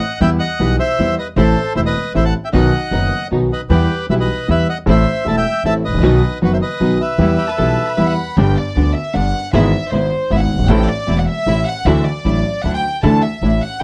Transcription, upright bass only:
0.21 0.37 E2 medium
0.60 0.76 B1 soft
0.99 1.15 E2 soft
1.36 1.53 A1 medium
1.76 1.92 E1 medium
2.15 2.31 A1 medium
2.53 2.70 B1 medium
2.91 3.08 F#1 soft
3.32 3.48 B1 medium
3.70 3.86 E2 medium
4.09 4.26 B1 medium
4.49 4.65 E2 medium
4.87 5.03 A1 medium
5.26 5.42 E1 medium
5.64 5.80 A1 soft
5.88 5.93 G#1 soft
5.93 5.98 A1 medium
5.98 6.01 A#1 medium
5.98 6.19 B1 medium
6.42 6.58 F#1 soft
6.80 6.97 B1 soft
7.18 7.35 E2 medium
7.59 7.75 B1 soft
7.98 8.14 E2 soft
8.37 8.53 G1 medium
8.76 8.92 D2 medium
9.15 9.31 G1 medium
9.53 9.70 G#1 medium
9.92 10.08 G#1 medium
10.30 10.47 G#1 medium
10.54 10.58 F#1 soft
10.59 10.63 G1 medium
10.64 10.67 G#1 medium
10.64 10.85 A1 medium
11.08 11.24 E1 medium
11.46 11.63 A1 medium
11.85 12.02 D2 medium
12.25 12.41 A1 medium
12.64 12.80 D2 medium
13.03 13.20 D2 medium
13.42 13.58 A1 medium

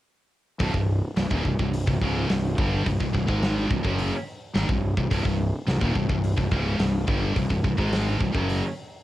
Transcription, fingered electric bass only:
0.60 0.73 C1 medium
0.74 1.00 C1 medium
1.17 1.30 C1 medium
1.31 1.44 D#1 medium
1.45 1.58 C1 medium
1.59 1.85 C1 medium
1.87 2.00 C1 medium
2.01 2.27 C#1 medium
2.30 2.56 C1 medium
2.58 2.84 G1 medium
2.87 2.99 C1 medium
3.01 3.13 C1 medium
3.15 3.28 C1 medium
3.29 3.68 G#1 medium
3.70 3.83 C1 medium
3.85 4.11 F#1 medium
4.55 4.68 G#1 loud
4.69 4.95 C1 medium
4.97 5.10 C1 medium
5.11 5.24 C1 medium
5.25 5.51 C1 medium
5.68 5.81 C1 medium
5.82 5.94 D#1 medium
5.96 6.09 C1 medium
6.09 6.35 C1 medium
6.38 6.51 C1 medium
6.52 6.78 C#1 medium
6.79 7.06 C1 medium
7.08 7.34 G1 medium
7.36 7.49 C1 medium
7.51 7.63 C1 medium
7.64 7.77 C1 medium
7.78 8.18 G#1 medium
8.21 8.34 C1 medium
8.35 8.61 F#1 medium

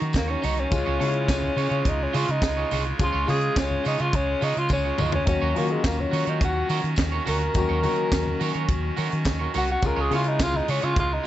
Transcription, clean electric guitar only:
0.00 muted clean electric guitar stroke soft
0.14 muted clean electric guitar stroke soft
0.28 0.41 D#4 soft
0.28 0.41 F#4 medium
0.28 0.40 C#5 medium
0.42 0.57 D#4 medium
0.42 0.57 F#4 medium
0.42 0.56 C#5 medium
0.57 muted clean electric guitar stroke soft
0.71 muted clean electric guitar stroke soft
0.86 0.97 F4 medium
0.86 0.98 G#4 medium
0.86 0.99 C#5 medium
0.98 1.11 F4 medium
0.98 1.11 G#4 medium
0.98 1.12 C#5 medium
1.27 muted clean electric guitar stroke soft
1.42 muted clean electric guitar stroke soft
1.56 1.71 F4 medium
1.56 1.69 G#4 medium
1.56 1.68 C#5 medium
1.69 1.83 F4 medium
1.69 1.82 G#4 medium
1.69 1.82 C#5 medium
1.99 muted clean electric guitar stroke soft
2.13 2.28 F4 loud
2.13 2.29 G#4 medium
2.13 2.27 C#5 loud
2.28 muted clean electric guitar stroke soft
2.57 2.69 F4 medium
2.57 2.69 G#4 medium
2.57 2.68 C#5 medium
2.71 2.86 F4 medium
2.71 2.86 G#4 medium
2.71 2.84 C#5 medium
2.85 muted clean electric guitar stroke soft
2.98 muted clean electric guitar stroke soft
3.12 3.25 F4 medium
3.12 3.27 G#4 medium
3.12 3.27 C#5 medium
3.26 3.39 F4 medium
3.26 3.39 G#4 medium
3.26 3.40 C#5 medium
3.42 muted clean electric guitar stroke soft
3.56 muted clean electric guitar stroke soft
3.70 muted clean electric guitar stroke soft
3.84 3.99 F4 medium
3.84 3.98 G#4 medium
3.84 3.97 C#5 medium
3.98 4.11 F4 soft
3.98 4.11 G#4 medium
3.98 4.10 C#5 medium
4.27 muted clean electric guitar stroke soft
4.41 4.56 F4 loud
4.41 4.56 G#4 loud
4.41 4.55 C#5 medium
4.56 muted clean electric guitar stroke soft
4.70 muted clean electric guitar stroke soft
4.84 4.97 F4 medium
4.84 4.96 G#4 medium
4.84 4.96 C#5 medium
4.98 5.13 F4 medium
4.98 5.14 G#4 medium
4.98 5.12 C#5 medium
5.14 muted clean electric guitar stroke soft
5.27 muted clean electric guitar stroke soft
5.41 5.54 F#4 medium
5.41 5.55 A#4 medium
5.41 5.56 C#5 medium
5.55 5.67 F#4 medium
5.55 5.67 A#4 medium
5.55 5.68 C#5 medium
5.70 muted clean electric guitar stroke soft
5.84 muted clean electric guitar stroke soft
5.98 muted clean electric guitar stroke soft
6.11 6.27 F#4 medium
6.11 6.26 A#4 medium
6.11 6.25 C#5 medium
6.26 6.39 F#4 soft
6.26 6.39 A#4 medium
6.26 6.38 C#5 medium
6.55 muted clean electric guitar stroke soft
6.69 6.84 F#4 medium
6.69 6.83 A#4 loud
6.69 6.82 C#5 medium
6.83 muted clean electric guitar stroke medium
6.98 muted clean electric guitar stroke soft
7.12 7.24 F#4 medium
7.12 7.25 A#4 soft
7.12 7.24 C#5 medium
7.26 7.41 F#4 medium
7.26 7.41 A#4 medium
7.26 7.39 C#5 medium
7.41 muted clean electric guitar stroke soft
7.54 muted clean electric guitar stroke soft
7.69 7.82 F#4 medium
7.69 7.83 A#4 medium
7.69 7.84 C#5 medium
7.83 7.95 F#4 medium
7.83 7.96 A#4 medium
7.83 7.96 C#5 medium
8.27 muted clean electric guitar stroke soft
8.40 8.54 F#4 medium
8.40 8.54 A#4 medium
8.40 8.53 C#5 medium
8.54 8.67 F#4 medium
8.54 8.66 A#4 medium
8.54 8.66 C#5 medium
8.83 muted clean electric guitar stroke soft
8.96 9.12 F#4 medium
8.96 9.11 A#4 loud
8.96 9.10 C#5 medium
9.11 muted clean electric guitar stroke medium
9.25 muted clean electric guitar stroke soft
9.39 9.52 F#4 soft
9.39 9.52 A#4 medium
9.39 9.51 C#5 medium
9.54 9.69 F#4 medium
9.54 9.67 A#4 medium
9.54 9.66 C#5 medium
9.67 muted clean electric guitar stroke medium
9.82 muted clean electric guitar stroke soft
9.96 10.10 F4 medium
9.96 10.11 G#4 medium
9.96 10.12 C#5 medium
10.11 10.23 F4 medium
10.11 10.23 G#4 medium
10.11 10.23 C#5 medium
10.25 muted clean electric guitar stroke soft
10.40 muted clean electric guitar stroke soft
10.54 muted clean electric guitar stroke soft
10.68 10.83 F4 medium
10.68 10.82 G#4 medium
10.68 10.81 C#5 loud
10.82 10.95 F4 soft
10.82 10.94 G#4 medium
10.82 10.94 C#5 medium
11.09 muted clean electric guitar stroke soft
11.24 11.27 F4 medium

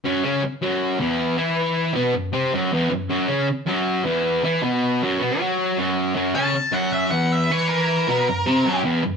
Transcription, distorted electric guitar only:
0.04 0.23 F#2 medium
0.04 0.23 F#3 loud
0.23 0.41 C#3 medium
0.23 0.42 C#4 medium
0.43 muted distorted electric guitar stroke medium
0.62 0.99 F#2 medium
0.62 1.00 F#3 loud
1.00 1.37 E2 medium
1.00 1.36 E3 medium
1.37 1.93 E3 medium
1.37 1.95 E4 loud
1.94 2.13 B2 medium
1.94 2.14 B3 medium
2.14 2.29 F#2 medium
2.33 2.52 C3 medium
2.33 2.52 C4 medium
2.53 2.72 F#2 medium
2.53 2.72 F#3 medium
2.72 2.90 E2 medium
2.72 2.91 E3 medium
2.90 3.06 F#2 medium
3.09 3.28 F#2 medium
3.09 3.29 F#3 loud
3.28 3.47 C#3 medium
3.28 3.47 C#4 medium
3.48 muted distorted electric guitar stroke medium
3.67 4.04 F#2 medium
3.67 4.05 F#3 loud
4.04 4.43 E2 medium
4.04 4.42 E3 medium
4.44 4.62 E3 medium
4.44 4.63 E4 loud
4.62 5.01 B2 medium
4.62 5.01 B3 loud
5.02 5.20 F#2 medium
5.02 5.21 F#3 loud
5.19 5.39 B2 medium
5.19 5.40 B3 medium
5.39 5.77 F#3 medium
5.39 5.78 F#4 loud
5.77 6.14 F#2 medium
5.77 6.15 F#3 medium
6.15 6.35 F#2 medium
6.15 6.35 F#3 loud
6.34 6.54 C#3 medium
6.34 6.55 C#4 medium
6.54 muted distorted electric guitar stroke medium
6.72 7.12 F#2 medium
6.72 7.12 F#3 loud
7.12 7.50 E2 medium
7.12 7.49 E3 medium
7.50 8.08 E3 medium
7.50 8.08 E4 loud
8.08 8.27 B2 medium
8.08 8.27 B3 loud
8.29 8.43 F#2 medium
8.46 8.65 C3 medium
8.46 8.66 C4 loud
8.65 8.84 F#2 medium
8.65 8.84 F#3 medium
8.84 9.03 E2 medium
8.84 9.03 E3 loud
9.04 9.17 F#2 medium

